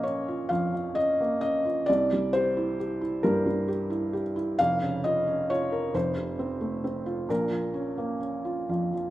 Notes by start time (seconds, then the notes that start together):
Already playing: A#1 A#2 F3 A#3 C#4 D#5 F5
0.03 C#4 C#5
0.28 F4
0.49 F2 F3 F5
0.74 F3
0.95 C#4 D#5
1.21 A#3
1.41 C#4 D#5
1.65 F4
1.86 C2 C3 D5
2.13 G3
2.33 G4 C5
2.57 E4
2.79 G4
3.01 E4
3.23 G2 G3 A#4
3.46 G3
3.68 G4
3.90 E4
4.13 G4
4.36 E4
4.59 F1 F2 F5
4.81 C#3
5.04 F4 D#5
5.27 C#4
5.50 F4 C#5
5.72 A#4
5.94 F1 F2 C5
6.17 C3
6.39 C4
6.61 A3
6.84 C4
7.06 F4
7.29 A#1 A#2 A#4
7.50 F3
7.74 C#4
7.98 A#3
8.21 C#4
8.45 F4
8.69 F2 F3
8.93 F3